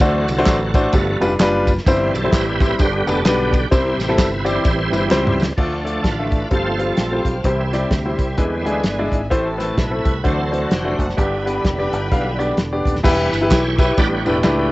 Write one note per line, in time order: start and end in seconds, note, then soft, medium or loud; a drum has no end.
0.00 0.24 D2 loud
0.00 0.71 D3 medium
0.00 0.71 E3 medium
0.00 0.72 F#3 medium
0.00 0.24 A3 medium
0.00 0.72 C4 medium
0.00 0.24 D4 medium
0.00 1.18 F#4 medium
0.00 0.24 F#4 medium
0.00 1.18 A4 medium
0.00 0.24 C5 medium
0.00 kick loud
0.00 ride medium
0.00 tambourine medium
0.28 0.44 C2 medium
0.28 ride medium
0.28 tambourine medium
0.39 0.57 A3 medium
0.39 0.57 D4 medium
0.39 0.57 F#4 medium
0.39 0.56 C5 loud
0.46 0.86 A1 medium
0.46 kick medium
0.46 snare loud
0.46 clap medium
0.46 ride medium
0.46 tambourine medium
0.74 0.93 A3 medium
0.74 0.93 D4 medium
0.74 0.94 F#4 medium
0.74 0.93 C5 medium
0.74 kick loud
0.74 ride medium
0.74 tambourine medium
0.93 1.17 G1 loud
0.93 1.63 G2 medium
0.93 1.27 F3 medium
0.93 1.27 A3 medium
0.93 1.28 B3 medium
0.93 kick loud
0.93 ride medium
0.93 tambourine medium
1.20 1.36 F1 medium
1.20 1.32 G3 medium
1.20 1.32 D4 medium
1.20 1.31 F4 medium
1.20 1.31 B4 loud
1.20 ride medium
1.20 tambourine medium
1.39 1.79 F#1 loud
1.39 1.70 G3 medium
1.39 1.70 D4 medium
1.39 1.70 F4 medium
1.39 1.70 B4 loud
1.39 snare loud
1.39 clap medium
1.39 ride medium
1.39 tambourine loud
1.67 kick medium
1.67 ride medium
1.67 tambourine medium
1.78 snare soft
1.84 2.10 G1 loud
1.84 2.57 G2 medium
1.84 2.74 E3 medium
1.84 2.75 G3 medium
1.84 2.10 G3 medium
1.84 2.75 C4 medium
1.84 2.10 C4 medium
1.84 2.10 E4 medium
1.84 2.10 C5 loud
1.84 kick loud
1.84 ride medium
1.84 tambourine medium
2.14 2.30 B1 loud
2.14 2.33 A4 medium
2.14 ride medium
2.14 tambourine medium
2.24 2.42 G3 medium
2.24 2.42 C4 medium
2.24 2.42 E4 medium
2.24 2.42 C5 medium
2.32 2.72 A1 medium
2.32 2.76 E4 medium
2.32 2.76 G4 medium
2.32 2.81 B4 loud
2.32 kick medium
2.32 snare loud
2.32 clap medium
2.32 ride medium
2.32 tambourine loud
2.60 2.79 G3 medium
2.60 2.79 C4 medium
2.60 2.79 E4 medium
2.60 2.79 C5 medium
2.60 kick loud
2.60 ride medium
2.60 tambourine medium
2.78 3.03 G1 loud
2.78 3.49 G2 medium
2.78 3.67 D3 medium
2.78 3.68 G3 medium
2.78 3.24 B3 medium
2.78 3.26 G4 medium
2.78 2.93 C5 loud
2.78 kick loud
2.78 ride medium
2.78 tambourine medium
3.06 3.22 F1 medium
3.06 3.17 G3 medium
3.06 3.17 B3 medium
3.06 3.17 D4 medium
3.06 3.26 A4 medium
3.06 3.17 B4 medium
3.06 ride medium
3.06 tambourine medium
3.25 3.64 B1 medium
3.25 3.55 G3 medium
3.25 3.55 B3 medium
3.25 3.68 B3 medium
3.25 3.55 D4 medium
3.25 3.68 D4 medium
3.25 3.73 G4 medium
3.25 3.55 B4 loud
3.25 snare loud
3.25 clap medium
3.25 ride medium
3.25 tambourine medium
3.53 kick medium
3.53 ride medium
3.53 tambourine medium
3.71 3.95 C2 loud
3.71 4.42 C3 medium
3.71 3.94 G3 medium
3.71 3.94 C4 medium
3.71 4.45 C4 medium
3.71 3.94 E4 medium
3.71 4.44 E4 medium
3.71 4.11 G4 medium
3.71 3.94 C5 medium
3.71 kick loud
3.71 ride medium
3.71 tambourine medium
3.98 4.14 A1 medium
3.98 snare soft
3.98 ride medium
3.98 tambourine medium
4.08 4.27 G3 medium
4.08 4.27 C4 medium
4.08 4.27 E4 medium
4.08 4.27 A4 medium
4.08 4.37 B4 loud
4.18 4.57 G1 loud
4.18 kick medium
4.18 snare loud
4.18 clap medium
4.18 ride medium
4.18 tambourine loud
4.38 4.46 B4 medium
4.45 5.53 E3 soft
4.45 4.67 G3 medium
4.45 5.53 G3 soft
4.45 4.67 C4 medium
4.45 5.53 C4 medium
4.45 4.67 E4 medium
4.45 5.35 E4 medium
4.45 5.35 G4 medium
4.45 5.07 C5 loud
4.45 4.67 D5 medium
4.45 ride medium
4.45 tambourine medium
4.65 4.88 A1 medium
4.65 kick loud
4.65 ride medium
4.65 tambourine medium
4.91 5.08 G1 medium
4.91 5.03 G3 medium
4.91 5.03 C4 medium
4.91 5.02 E4 medium
4.91 5.02 B4 medium
4.91 ride medium
4.91 tambourine medium
5.11 5.50 C#2 loud
5.11 5.40 G3 loud
5.11 5.41 C4 medium
5.11 5.41 E4 medium
5.11 5.41 C5 loud
5.11 snare medium
5.11 clap medium
5.11 tambourine medium
5.27 mid tom medium
5.40 snare loud
5.40 tambourine medium
5.57 5.97 D2 medium
5.57 6.28 D3 medium
5.57 6.28 F3 soft
5.57 6.28 A3 soft
5.57 5.73 A3 medium
5.57 6.05 D4 medium
5.57 5.73 D4 medium
5.57 5.73 F4 medium
5.57 7.42 A4 medium
5.57 5.73 D5 medium
5.57 6.50 D5 medium
5.57 7.42 F5 medium
5.57 6.50 A5 medium
5.57 kick medium
5.57 crash medium
5.85 6.00 A3 medium
5.85 6.01 D4 medium
5.85 6.00 F4 medium
5.85 6.05 A4 medium
5.85 6.00 D5 medium
5.85 closed hi-hat medium
6.04 6.44 A1 medium
6.04 6.49 D4 medium
6.04 6.49 F4 medium
6.04 6.49 B4 medium
6.04 kick medium
6.04 snare medium
6.04 closed hi-hat medium
6.19 6.38 A3 medium
6.19 6.39 D4 soft
6.19 6.39 F4 soft
6.19 6.39 E5 medium
6.32 kick loud
6.32 closed hi-hat medium
6.50 6.90 G1 medium
6.50 7.21 G2 medium
6.50 7.23 F3 medium
6.50 6.66 G3 medium
6.50 7.23 A3 soft
6.50 6.66 C4 medium
6.50 6.80 C4 medium
6.50 6.66 F4 medium
6.50 6.80 F4 medium
6.50 6.66 A4 medium
6.50 6.80 A4 medium
6.50 8.35 C5 medium
6.50 6.81 C5 loud
6.50 8.35 G5 medium
6.50 kick medium
6.50 closed hi-hat medium
6.79 6.94 G3 medium
6.79 6.94 C4 medium
6.79 7.41 C4 medium
6.79 6.94 F4 medium
6.79 7.28 F4 medium
6.79 7.28 A4 medium
6.79 6.94 C5 medium
6.79 closed hi-hat medium
6.97 7.21 A#1 medium
6.97 snare loud
6.97 closed hi-hat medium
7.12 7.32 G3 medium
7.12 7.32 C4 soft
7.12 7.32 F4 medium
7.12 7.32 C5 medium
7.25 7.41 B1 medium
7.25 7.44 F4 medium
7.25 kick medium
7.25 closed hi-hat medium
7.44 7.84 C2 medium
7.44 8.15 C3 medium
7.44 7.79 E3 soft
7.44 7.60 G3 medium
7.44 7.92 G3 medium
7.44 7.60 C4 medium
7.44 7.60 E4 medium
7.44 8.36 G4 medium
7.44 7.60 C5 medium
7.44 10.21 E5 medium
7.44 kick medium
7.44 closed hi-hat medium
7.48 7.91 C4 medium
7.48 7.92 E4 medium
7.73 7.88 G3 medium
7.73 7.88 C4 medium
7.73 7.88 E4 medium
7.73 7.88 D5 medium
7.73 snare soft
7.73 closed hi-hat medium
7.91 8.14 D2 medium
7.91 8.81 G3 soft
7.91 8.81 C4 soft
7.91 8.81 E4 medium
7.91 kick medium
7.91 snare medium
7.91 closed hi-hat medium
8.06 8.25 G3 medium
8.06 8.25 C4 medium
8.06 8.25 E4 medium
8.06 8.25 C5 medium
8.19 8.35 C2 medium
8.19 kick medium
8.19 closed hi-hat medium
8.37 8.65 E2 medium
8.37 9.09 D3 medium
8.37 9.08 E3 medium
8.37 8.53 G#3 medium
8.37 9.09 G#3 soft
8.37 9.10 B3 medium
8.37 8.53 D4 medium
8.37 8.53 E4 medium
8.37 9.30 B4 medium
8.37 8.53 B4 medium
8.37 9.30 D5 medium
8.37 9.30 G#5 medium
8.37 kick medium
8.37 closed hi-hat medium
8.65 8.81 D2 medium
8.65 8.81 G#3 medium
8.65 8.81 D4 medium
8.65 8.81 E4 medium
8.65 8.81 G#4 medium
8.65 closed hi-hat medium
8.84 9.08 G1 medium
8.84 snare loud
8.84 closed hi-hat medium
8.99 9.19 G#3 medium
8.99 9.19 D4 medium
8.99 9.19 E4 medium
8.99 9.19 D5 medium
9.12 9.28 G#1 medium
9.12 kick medium
9.12 closed hi-hat medium
9.30 9.71 A1 medium
9.30 10.02 A2 medium
9.30 9.65 E3 soft
9.30 9.46 A3 medium
9.30 9.66 A3 soft
9.30 9.46 C4 medium
9.30 10.24 C4 medium
9.30 9.66 C4 medium
9.30 9.46 E4 medium
9.30 10.24 A4 medium
9.30 9.46 C5 medium
9.30 10.23 A5 medium
9.30 kick medium
9.30 closed hi-hat medium
9.58 9.74 A3 medium
9.58 9.74 C4 medium
9.58 9.74 E4 medium
9.58 9.79 A4 medium
9.58 9.74 B4 medium
9.58 snare soft
9.58 closed hi-hat medium
9.77 10.01 B1 medium
9.77 10.22 E4 medium
9.77 10.27 B4 medium
9.77 kick medium
9.77 snare medium
9.77 closed hi-hat medium
9.91 10.11 A3 medium
9.91 10.11 C4 soft
9.91 10.11 E4 medium
9.91 10.11 A4 medium
10.05 10.21 C2 medium
10.05 kick medium
10.05 closed hi-hat medium
10.23 10.64 D2 medium
10.23 10.95 D3 medium
10.23 10.95 E3 medium
10.23 10.96 F#3 soft
10.23 10.40 A3 medium
10.23 10.96 C4 medium
10.23 10.39 D4 medium
10.23 10.39 F#4 medium
10.23 10.99 F#4 medium
10.23 10.53 A4 medium
10.23 10.40 C5 medium
10.23 11.17 C5 medium
10.23 10.54 C5 loud
10.23 11.16 D5 soft
10.23 11.17 F#5 soft
10.23 11.17 A5 medium
10.23 kick medium
10.23 closed hi-hat medium
10.51 10.67 A3 soft
10.51 10.67 D4 medium
10.51 10.68 F#4 soft
10.51 10.73 A4 medium
10.51 10.68 C5 medium
10.51 closed hi-hat medium
10.71 10.95 F1 medium
10.71 11.01 G4 medium
10.71 snare loud
10.71 closed hi-hat medium
10.85 11.05 A3 medium
10.85 11.05 D4 medium
10.85 11.05 F#4 medium
10.85 11.05 C5 medium
10.99 11.15 F#1 medium
10.99 11.19 F#4 medium
10.99 kick medium
10.99 closed hi-hat medium
11.09 snare soft
11.16 11.58 G1 medium
11.16 11.88 G2 medium
11.16 13.00 D3 soft
11.16 11.65 G3 medium
11.16 11.33 B3 medium
11.16 11.64 B3 medium
11.16 11.33 D4 medium
11.16 11.65 E4 medium
11.16 11.33 G4 medium
11.16 13.02 B4 medium
11.16 13.02 D5 medium
11.16 11.33 D5 medium
11.16 13.02 G5 medium
11.16 13.02 B5 medium
11.16 kick medium
11.16 closed hi-hat medium
11.45 11.61 B3 medium
11.45 11.61 D4 medium
11.45 11.61 G4 medium
11.45 11.61 B4 medium
11.45 closed hi-hat medium
11.64 11.88 F1 medium
11.64 12.55 G3 soft
11.64 12.54 B3 soft
11.64 12.55 E4 medium
11.64 kick medium
11.64 snare medium
11.64 closed hi-hat medium
11.79 11.99 B3 medium
11.79 11.99 D4 medium
11.79 11.99 G4 medium
11.79 11.99 D5 medium
11.93 12.09 G1 medium
11.93 closed hi-hat medium
12.12 12.51 B1 medium
12.12 12.27 B3 medium
12.12 12.27 D4 medium
12.12 12.27 G4 medium
12.12 12.27 F5 medium
12.12 kick medium
12.12 closed hi-hat medium
12.38 12.54 B3 medium
12.38 12.54 D4 medium
12.38 12.54 G4 medium
12.38 12.55 D5 medium
12.38 closed hi-hat medium
12.57 12.81 E1 medium
12.57 snare loud
12.57 closed hi-hat medium
12.73 12.92 B3 medium
12.73 12.92 D4 medium
12.73 12.92 G4 medium
12.73 12.92 D5 medium
12.85 13.01 D#1 medium
12.85 kick medium
12.85 closed hi-hat medium
12.95 snare soft
13.03 13.29 E1 loud
13.03 13.74 E3 medium
13.03 13.38 G3 medium
13.03 13.39 B3 medium
13.03 13.27 E4 medium
13.03 13.39 E4 medium
13.03 13.27 G4 medium
13.03 13.27 B4 loud
13.03 kick loud
13.03 crash medium
13.03 tambourine medium
13.33 13.49 G1 medium
13.33 13.41 B4 medium
13.33 ride medium
13.33 tambourine medium
13.41 13.60 E4 medium
13.41 13.60 G4 medium
13.41 13.60 B4 medium
13.51 13.90 B1 medium
13.51 13.94 E4 medium
13.51 13.95 G4 medium
13.51 13.99 C#5 loud
13.51 kick medium
13.51 snare loud
13.51 clap loud
13.51 ride medium
13.51 tambourine medium
13.79 13.98 E4 medium
13.79 13.98 G4 medium
13.79 13.98 B4 medium
13.79 kick loud
13.79 ride medium
13.79 tambourine medium
13.97 14.22 A1 loud
13.97 14.68 A2 medium
13.97 14.31 G3 medium
13.97 14.31 B3 medium
13.97 14.23 D4 medium
13.97 14.24 G4 medium
13.97 14.24 B4 medium
13.97 14.08 D5 loud
13.97 kick loud
13.97 ride medium
13.97 tambourine medium
14.16 14.25 C#5 medium
14.25 14.42 E1 medium
14.25 14.37 A3 medium
14.25 14.72 D4 medium
14.25 14.36 D4 medium
14.25 14.36 E4 medium
14.25 14.72 G4 medium
14.25 14.37 G4 medium
14.25 14.72 B4 loud
14.25 14.37 B4 medium
14.25 ride medium
14.25 tambourine medium
14.43 14.72 C#2 medium
14.43 14.72 A3 medium
14.43 14.72 D4 medium
14.43 14.72 E4 medium
14.43 14.72 G4 medium
14.43 14.72 B4 medium
14.43 snare loud
14.43 clap loud
14.43 ride medium
14.43 tambourine medium